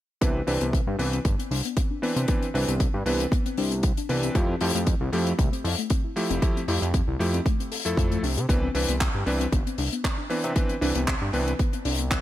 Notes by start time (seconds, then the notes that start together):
0.21 C2 E3 B3 C4 D4 B4, kick, closed hi-hat
0.35 C4
0.47 C2 E3 C4 D4 B4, open hi-hat
0.61 C2 B3, closed hi-hat
0.73 C4, kick, closed hi-hat
0.87 G2 D4
0.99 C2 E3 B3 C4 D4 B4, open hi-hat
1.13 C4, closed hi-hat
1.25 G1 B3, kick, closed hi-hat
1.39 C4, closed hi-hat
1.51 C2 D4, open hi-hat
1.65 B3, closed hi-hat
1.77 C4, kick, closed hi-hat
1.91 D4
2.02 E3 B3 C4 D4 B4, open hi-hat
2.16 C3 C4, closed hi-hat
2.28 E3 B3 C4 D4 B4, kick, closed hi-hat
2.42 C4, closed hi-hat
2.54 C2 E3 C4 D4 B4, open hi-hat
2.68 C2 B3, closed hi-hat
2.80 C4, kick, closed hi-hat
2.94 G2 D4
3.06 C2 E3 B3 C4 D4 B4, open hi-hat
3.20 C4, closed hi-hat
3.32 B3, kick, closed hi-hat
3.46 C4, closed hi-hat
3.57 C2 D4, open hi-hat
3.71 B3, closed hi-hat
3.83 C4, kick, closed hi-hat
3.97 D4, closed hi-hat
4.09 C2 E3 B3 C4 D4 B4, open hi-hat
4.23 C4, closed hi-hat
4.35 F2 F3 A3 E4 G4, kick, closed hi-hat
4.49 C4
4.61 F2 F3 A3 E4 G4, open hi-hat
4.75 F2 A3, closed hi-hat
4.87 C4, kick, closed hi-hat
5.01 C2 E4
5.12 F2 F3 A3 E4 G4, open hi-hat
5.27 C4, closed hi-hat
5.38 C2 A3, kick, closed hi-hat
5.52 C4, closed hi-hat
5.64 F2 E4, open hi-hat
5.78 A3, closed hi-hat
5.90 C4, kick, closed hi-hat
6.04 E4
6.16 F3 A3 E4 G4, open hi-hat
6.30 F1 C4, closed hi-hat
6.42 F3 A3 E4 G4, kick, closed hi-hat
6.56 C4, closed hi-hat
6.68 F2 F3 A3 E4 G4, open hi-hat
6.82 F2 A3, closed hi-hat
6.94 C4, kick, closed hi-hat
7.08 C2 E4
7.19 F2 F3 A3 E4 G4, open hi-hat
7.34 C4, closed hi-hat
7.46 A3, kick, closed hi-hat
7.60 C4, closed hi-hat
7.72 A4, open hi-hat
7.85 F2 F3 A3 E4 A4, closed hi-hat
7.97 F2 A3, kick, closed hi-hat
8.11 A3, closed hi-hat
8.23 C2 D4, open hi-hat
8.37 C3 G4, closed hi-hat
8.49 C2 E3 B3 C4 D4 B4, kick, closed hi-hat
8.63 C4
8.74 C2 E3 C4 D4 B4, open hi-hat
8.88 C2 B3, closed hi-hat
9.01 C4, kick, clap, closed hi-hat
9.15 G2 D4
9.26 C2 E3 B3 C4 D4 B4, open hi-hat
9.40 C4, closed hi-hat
9.52 G1 B3, kick, closed hi-hat
9.67 C4, closed hi-hat
9.78 C2 D4, open hi-hat
9.92 B3, closed hi-hat
10.04 C4, kick, clap, closed hi-hat
10.18 D4
10.30 E3 B3 C4 D4 B4, open hi-hat
10.44 C3 C4, closed hi-hat
10.55 E3 B3 C4 D4 B4, kick, closed hi-hat
10.69 C4, closed hi-hat
10.81 C2 E3 C4 D4 B4, open hi-hat
10.95 C2 B3, closed hi-hat
11.07 C4, kick, clap, closed hi-hat
11.21 G2 D4
11.33 C2 E3 B3 C4 D4 B4, open hi-hat
11.47 C4, closed hi-hat
11.59 B3, kick, closed hi-hat
11.73 C4, closed hi-hat
11.85 C2 D4, open hi-hat
11.98 B3, closed hi-hat
12.11 C4, kick, clap, closed hi-hat